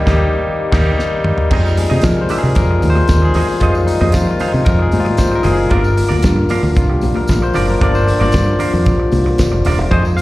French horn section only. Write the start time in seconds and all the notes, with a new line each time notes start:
Already playing: D#3 G3 C4 G4
1.52 D#3 F3 C4 F4
3.62 A#3
5.71 D3 G3
9.92 D#3 F3 C4 F4